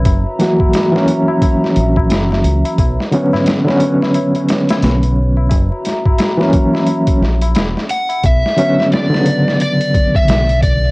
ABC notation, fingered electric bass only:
X:1
M:4/4
L:1/8
Q:"Swing 16ths" 1/4=88
K:Bm
V:1 name="Fingered electric bass" clef=bass
F,,, z4 ^A,,, F,,, C,, | B,,, z4 z B,,,2 | F,,, z4 ^A,,, E,,, z | B,,, z4 z B,,,2 |]